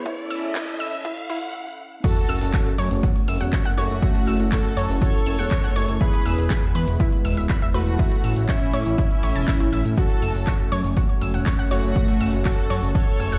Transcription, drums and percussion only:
0.06 kick, closed hi-hat
0.18 closed hi-hat
0.30 open hi-hat
0.43 closed hi-hat
0.55 kick, clap, closed hi-hat
0.68 closed hi-hat
0.80 open hi-hat
0.93 closed hi-hat
1.05 kick, closed hi-hat
1.17 closed hi-hat
1.30 open hi-hat
1.42 closed hi-hat
2.04 kick, closed hi-hat, crash, tambourine
2.17 snare, closed hi-hat, tambourine
2.29 closed hi-hat, open hi-hat
2.41 snare, closed hi-hat, tambourine
2.53 kick, snare, clap, closed hi-hat, tambourine
2.66 closed hi-hat, tambourine
2.78 closed hi-hat, open hi-hat
2.91 snare, closed hi-hat, tambourine
3.03 kick, closed hi-hat, tambourine
3.16 closed hi-hat, tambourine
3.28 snare, closed hi-hat, open hi-hat
3.40 closed hi-hat, tambourine
3.53 kick, snare, clap, closed hi-hat, tambourine
3.65 closed hi-hat, tambourine
3.78 closed hi-hat, open hi-hat
3.90 closed hi-hat, tambourine
4.02 kick, closed hi-hat, tambourine
4.15 snare, closed hi-hat, tambourine
4.27 closed hi-hat, open hi-hat
4.40 snare, closed hi-hat, tambourine
4.52 kick, snare, clap, closed hi-hat, tambourine
4.64 closed hi-hat, tambourine
4.77 snare, closed hi-hat, open hi-hat
4.89 snare, closed hi-hat, tambourine
5.02 kick, closed hi-hat, tambourine
5.14 closed hi-hat, tambourine
5.26 closed hi-hat, open hi-hat
5.38 closed hi-hat, tambourine
5.51 kick, snare, clap, closed hi-hat, tambourine
5.63 closed hi-hat, tambourine
5.76 snare, closed hi-hat, open hi-hat
5.89 snare, closed hi-hat, tambourine
6.00 kick, closed hi-hat, tambourine
6.13 snare, closed hi-hat, tambourine
6.26 closed hi-hat, open hi-hat
6.38 snare, closed hi-hat, tambourine
6.50 kick, snare, clap, closed hi-hat, tambourine
6.63 closed hi-hat, tambourine
6.75 closed hi-hat, open hi-hat
6.88 snare, closed hi-hat, tambourine
7.00 kick, closed hi-hat, tambourine
7.12 closed hi-hat, tambourine
7.25 snare, closed hi-hat, open hi-hat
7.37 closed hi-hat, tambourine
7.49 kick, snare, clap, closed hi-hat, tambourine
7.62 closed hi-hat, tambourine
7.74 closed hi-hat, open hi-hat
7.86 closed hi-hat, tambourine
7.99 kick, closed hi-hat, tambourine
8.12 snare, closed hi-hat, tambourine
8.24 closed hi-hat, open hi-hat
8.36 snare, closed hi-hat, tambourine
8.48 kick, snare, clap, closed hi-hat, tambourine
8.61 closed hi-hat, tambourine
8.73 snare, closed hi-hat, open hi-hat
8.86 snare, tambourine
8.98 kick, closed hi-hat, tambourine
9.10 closed hi-hat, tambourine
9.23 closed hi-hat, open hi-hat
9.36 closed hi-hat, tambourine
9.48 kick, snare, clap, closed hi-hat, tambourine
9.60 closed hi-hat, tambourine
9.73 snare, closed hi-hat, open hi-hat
9.85 snare, closed hi-hat, tambourine
9.97 kick, closed hi-hat, tambourine
10.10 snare, closed hi-hat, tambourine
10.22 closed hi-hat, open hi-hat
10.34 snare, closed hi-hat, tambourine
10.47 kick, snare, clap, closed hi-hat, tambourine
10.60 closed hi-hat, tambourine
10.72 closed hi-hat, open hi-hat
10.84 snare, closed hi-hat, tambourine
10.96 kick, closed hi-hat, tambourine
11.09 closed hi-hat, tambourine
11.21 snare, closed hi-hat, open hi-hat
11.34 closed hi-hat, tambourine
11.46 kick, snare, clap, closed hi-hat, tambourine
11.59 closed hi-hat, tambourine
11.71 closed hi-hat, open hi-hat
11.83 closed hi-hat, tambourine
11.96 kick, closed hi-hat, tambourine
12.08 snare, closed hi-hat, tambourine
12.21 closed hi-hat, open hi-hat
12.33 snare, closed hi-hat, tambourine
12.45 kick, snare, clap, closed hi-hat, tambourine
12.58 closed hi-hat, tambourine
12.70 snare, closed hi-hat, open hi-hat
12.82 snare, closed hi-hat, tambourine
12.95 kick, closed hi-hat, tambourine
13.07 closed hi-hat, tambourine
13.20 closed hi-hat, open hi-hat
13.32 closed hi-hat, tambourine

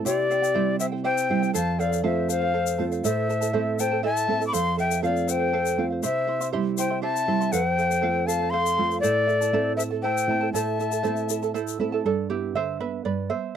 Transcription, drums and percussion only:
0.06 shaker
0.31 shaker
0.44 shaker
0.80 shaker
1.18 shaker
1.43 shaker
1.55 shaker
1.80 shaker
1.93 shaker
2.30 shaker
2.67 shaker
2.92 shaker
3.05 shaker
3.30 shaker
3.42 shaker
3.79 shaker
4.17 shaker
4.42 shaker
4.54 shaker
4.79 shaker
4.91 shaker
5.04 shaker
5.16 shaker
5.29 shaker
5.66 shaker
6.03 shaker
6.41 shaker
6.78 shaker
7.16 shaker
7.41 shaker
7.53 shaker
7.79 shaker
7.91 shaker
8.29 shaker
8.66 shaker
8.91 shaker
9.04 shaker
9.29 shaker
9.42 shaker
9.80 shaker
10.17 shaker
10.55 shaker
10.80 shaker
10.92 shaker
11.04 shaker
11.16 shaker
11.29 shaker
11.43 shaker
11.55 shaker
11.68 shaker

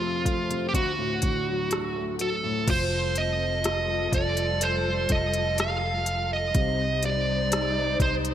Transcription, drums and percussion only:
0.25 kick, closed hi-hat
0.51 closed hi-hat
0.74 kick, closed hi-hat
1.22 kick, closed hi-hat
1.71 cross-stick, closed hi-hat
2.19 closed hi-hat
2.68 kick, closed hi-hat, crash
3.16 closed hi-hat
3.64 cross-stick, closed hi-hat
4.12 kick, closed hi-hat
4.37 closed hi-hat
4.61 closed hi-hat
5.09 kick, closed hi-hat
5.34 closed hi-hat
5.58 cross-stick, closed hi-hat
6.06 closed hi-hat
6.55 kick, closed hi-hat
7.03 closed hi-hat
7.52 cross-stick, closed hi-hat
8.00 kick, closed hi-hat
8.25 closed hi-hat

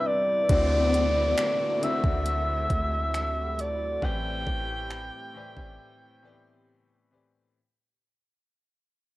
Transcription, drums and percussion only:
0.49 kick, closed hi-hat
0.94 closed hi-hat
1.38 finger snap, closed hi-hat
1.83 closed hi-hat
2.04 kick
2.26 closed hi-hat
2.70 kick, closed hi-hat
3.14 finger snap, closed hi-hat
3.59 closed hi-hat
4.02 kick
4.47 kick
4.91 finger snap
5.57 kick

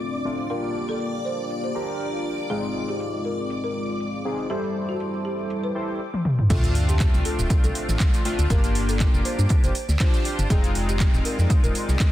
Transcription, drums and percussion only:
0.00 closed hi-hat
0.14 closed hi-hat
0.39 closed hi-hat
0.50 closed hi-hat
0.64 closed hi-hat
1.00 closed hi-hat
1.50 closed hi-hat
1.64 closed hi-hat
2.00 closed hi-hat
2.14 closed hi-hat
2.39 closed hi-hat
2.50 closed hi-hat
2.64 closed hi-hat
2.89 closed hi-hat
3.00 closed hi-hat
3.50 closed hi-hat
3.64 closed hi-hat
4.00 closed hi-hat
4.14 closed hi-hat
4.39 closed hi-hat
4.50 closed hi-hat
4.64 closed hi-hat
4.89 closed hi-hat
5.00 closed hi-hat
5.14 closed hi-hat
5.39 closed hi-hat
5.50 closed hi-hat
5.64 closed hi-hat
5.89 closed hi-hat
6.14 high tom
6.25 mid tom
6.39 mid tom
6.50 kick, closed hi-hat, crash, shaker
6.64 closed hi-hat, shaker
6.75 closed hi-hat, open hi-hat
6.89 closed hi-hat, shaker
7.00 kick, snare, clap, closed hi-hat, shaker
7.14 closed hi-hat, shaker
7.25 closed hi-hat, open hi-hat
7.38 snare, shaker
7.50 kick, closed hi-hat, shaker
7.64 closed hi-hat, shaker
7.75 closed hi-hat, open hi-hat
7.89 snare, shaker
8.00 kick, snare, clap, closed hi-hat, shaker
8.14 closed hi-hat, shaker
8.25 closed hi-hat, open hi-hat
8.39 closed hi-hat, shaker
8.50 kick, closed hi-hat, shaker
8.64 closed hi-hat, shaker
8.75 snare, closed hi-hat, open hi-hat
8.89 open hi-hat, shaker
9.00 kick, snare, clap, closed hi-hat, shaker
9.14 shaker
9.25 closed hi-hat, open hi-hat
9.39 closed hi-hat, shaker
9.49 kick, closed hi-hat, shaker
9.64 closed hi-hat, shaker
9.75 closed hi-hat, open hi-hat
9.89 snare, shaker
10.00 kick, snare, clap, closed hi-hat, open hi-hat, shaker
10.14 closed hi-hat, shaker
10.25 closed hi-hat, open hi-hat
10.39 closed hi-hat, shaker
10.50 kick, closed hi-hat, shaker
10.64 closed hi-hat, shaker
10.75 closed hi-hat, open hi-hat
10.89 closed hi-hat, shaker
11.00 kick, snare, clap, closed hi-hat, shaker
11.14 closed hi-hat, shaker
11.25 closed hi-hat, open hi-hat
11.39 snare, shaker
11.50 kick, closed hi-hat, shaker
11.64 closed hi-hat, shaker
11.75 closed hi-hat, open hi-hat
11.88 snare, shaker
12.00 kick, snare, clap, closed hi-hat, shaker

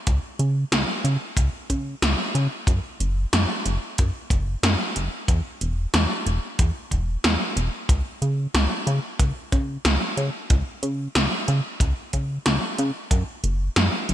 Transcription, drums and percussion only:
0.07 kick, closed hi-hat
0.39 closed hi-hat
0.72 snare, closed hi-hat
1.05 closed hi-hat
1.37 kick, closed hi-hat
1.70 kick, closed hi-hat
2.02 snare, closed hi-hat
2.35 closed hi-hat
2.67 kick, closed hi-hat
3.00 closed hi-hat
3.33 snare, closed hi-hat
3.66 closed hi-hat
3.98 kick, closed hi-hat
4.30 kick, closed hi-hat
4.63 snare, closed hi-hat
4.96 closed hi-hat
5.28 kick, closed hi-hat
5.61 closed hi-hat
5.94 snare, closed hi-hat
6.26 closed hi-hat
6.59 kick, closed hi-hat
6.91 kick, closed hi-hat
7.24 snare, closed hi-hat
7.57 closed hi-hat
7.89 kick, closed hi-hat
8.22 closed hi-hat
8.55 snare, closed hi-hat
8.87 closed hi-hat
9.19 kick, closed hi-hat
9.52 kick, closed hi-hat
9.85 snare, closed hi-hat
10.17 closed hi-hat
10.50 kick, closed hi-hat
10.83 closed hi-hat
11.15 snare, closed hi-hat
11.48 closed hi-hat
11.80 kick, closed hi-hat
12.13 kick, closed hi-hat
12.46 snare, closed hi-hat
12.78 closed hi-hat
13.11 kick, closed hi-hat
13.44 closed hi-hat
13.76 snare, closed hi-hat
14.09 closed hi-hat

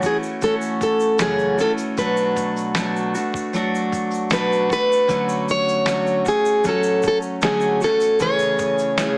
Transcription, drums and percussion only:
0.02 kick, shaker
0.23 shaker
0.41 kick, shaker
0.61 shaker
0.81 kick, shaker
1.00 shaker
1.18 snare, shaker
1.39 shaker
1.59 snare, shaker
1.78 shaker
1.97 kick, shaker
2.17 shaker
2.36 kick, shaker
2.56 shaker
2.58 shaker
2.75 snare, shaker
2.76 shaker
2.97 shaker
3.15 shaker
3.34 kick, shaker
3.53 shaker
3.55 shaker
3.75 shaker
3.92 kick, shaker
3.94 shaker
4.11 shaker
4.14 shaker
4.30 snare, shaker
4.33 shaker
4.53 shaker
4.70 kick, shaker
4.92 shaker
5.09 kick, shaker
5.29 shaker
5.49 shaker
5.68 shaker
5.86 snare, shaker
5.88 shaker
6.07 shaker
6.26 kick, shaker
6.27 shaker
6.45 shaker
6.64 kick, shaker
6.83 shaker
7.03 kick, shaker
7.22 shaker
7.42 snare, shaker
7.61 shaker
7.81 snare, shaker
7.83 shaker
8.01 shaker
8.20 kick, shaker
8.39 shaker
8.59 kick, shaker
8.79 shaker
8.98 snare, shaker

